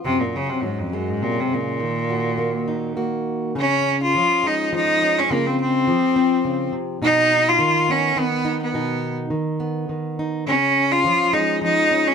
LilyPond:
<<
  \new Staff \with { instrumentName = "Cello" } { \time 3/4 \key des \major \tempo 4 = 104 c16 bes,16 des16 c16 aes,16 f,16 ges,16 aes,16 bes,16 c16 bes,8~ | bes,2 r4 | des'8. f'8. ees'8 ees'8. des'16 | bes16 c'16 c'2 r8 |
ees'8. f'8. des'8 ces'8. ces'16~ | ces'8. r2 r16 | des'8. f'8. ees'8 ees'8. des'16 | }
  \new Staff \with { instrumentName = "Steel-string acoustic guitar" } { \clef bass \time 3/4 \key des \major << { r8 des'4 aes4. | r8 ges'4 ees'8 ges'4 | des'4. aes4 des'8 | f'4. c'4. |
ees'4. ces'4 ees'8 | ees'4. ces'4 ees'8 | des'4. aes4 des'8 | } \\ { ges,4 ges4 c8 des8 | ees4 bes4 bes4 | des4 f4 f4 | des4 f4 des8 c8 |
ces4 ees4 ees4 | ces4 ees4 ees4 | des4 f4 f4 | } >> }
>>